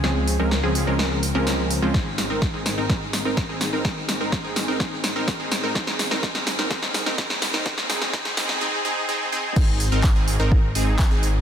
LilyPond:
<<
  \new Staff \with { instrumentName = "Supersaw synth" } { \time 4/4 \key aes \major \tempo 4 = 126 <f aes c' des' aes'>8. <f aes c' des' bes'>16 r16 <f aes c' des' aes'>8 <f aes c' des' bes'>8. r16 <f aes c' des' bes'>4 <f aes c' des' f'>16 | r8. <c' ees' bes'>16 r16 <c' ees' aes'>8 <c' ees' bes'>16 <c' ees' aes'>8. <c' ees' bes'>16 r16 <c' ees' aes'>8 <c' ees' bes'>16 | <c' ees' aes'>8. <c' ees' bes'>16 r16 <c' ees' aes'>8 <c' ees' bes'>16 <ees' aes'>8. <c' ees' bes'>16 r16 <c' ees' aes'>8 <c' ees' bes'>16 | <c' ees'>8. <c' ees' bes'>16 <c' aes'>8. <c' ees' bes'>16 <c' ees' aes'>8. <c' ees' bes'>16 aes'8. <c' ees' bes'>16 |
<c' ees' aes'>8 <c' ees' aes'>8 <ees' aes'>8 <c' ees' aes'>8 <c' ees' aes'>8 <c' ees' aes'>8 <c' ees' aes'>8 <c' ees' aes'>8 | <c' ees' aes'>8. <c' ees' bes'>16 r16 <c' ees' aes'>8 <c' ees' bes'>8. <c' ees' aes'>8. <c' ees' aes'>16 r8 | }
  \new Staff \with { instrumentName = "Detuned saw bass" } { \clef bass \time 4/4 \key aes \major des,8. r8 des,8 des,4 des,4 r16 | r8. aes,,8 aes,,8 aes,,16 r8. aes,,8 aes,,8 aes,,16 | r8. aes,,8 aes,,8 aes,,16 aes,,8. aes,,8 aes,,8 aes,16 | r8. aes,,16 r8. aes,,16 r8. aes,,16 r8. aes,,16 |
r8 aes,,8 r8 aes,,8 r2 | aes,,8. aes,,8 aes,,8 aes,,8. aes,,8. aes,,8. | }
  \new DrumStaff \with { instrumentName = "Drums" } \drummode { \time 4/4 sn8 hho8 sn8 hho8 sn8 hho8 <hho sn>8 hho8 | <bd sn>8 <hho sn>8 <bd sn>8 <hho sn>8 <bd sn>8 <hho sn>8 <bd sn>8 <hho sn>8 | <bd sn>8 <hho sn>8 <bd sn>8 <hho sn>8 <bd sn>8 <hho sn>8 <hho bd sn>8 <hho sn>8 | <bd sn>16 sn16 <hho sn>16 sn16 <bd sn>16 sn16 <hho sn>16 sn16 <bd sn>16 sn16 <hho sn>16 sn16 <bd sn>16 sn16 <hho sn>16 sn16 |
<bd sn>16 sn16 <hho sn>16 sn16 <bd sn>16 sn16 <hho sn>16 sn16 r4 r4 | <cymc bd>8 hho8 <hc bd>8 hho8 bd8 hho8 <hc bd>8 hho8 | }
>>